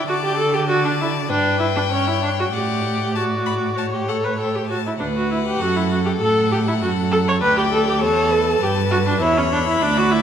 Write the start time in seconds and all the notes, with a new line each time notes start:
0.08 D3 F#4 D5 A5
0.24 G4
0.38 A4
0.54 G4
0.68 F#4 D5 A5
0.85 D4
1.01 E4
1.29 G2 D4 B4 G5
1.59 E4
1.76 D4
1.91 C#4 C#5
2.07 E4
2.22 D4
2.39 F#4
2.52 A2 G4 D5 F#5
3.14 F#4 D5 A5
3.46 B5
3.76 C#5 A5
3.94 G4
4.08 A4 F#5
4.24 B4
4.38 A4 G5
4.55 G4
4.67 F#4 A5
4.87 E4
4.99 D2 D4 B4 F#5
5.16 F#4
5.31 E4
5.46 G4
5.60 F#2 F#4 A4
5.76 E4
5.91 F#4
6.05 G4
6.20 A2 A4 F#5
6.52 G4
6.68 E4
6.81 F#2 F#4 A4
7.12 A4
7.28 C#5
7.40 D2 B4 D5 G5
7.58 G4
7.72 A4
7.87 G4
8.01 E2 A4 C#5 A5
8.31 B4
8.61 G2 G4
8.91 F#4
9.07 D4
9.21 E2 E4 C#5 B5
9.38 C#4
9.52 D4
9.68 E4
9.81 D2 D4 D5
9.98 F#4
10.12 E4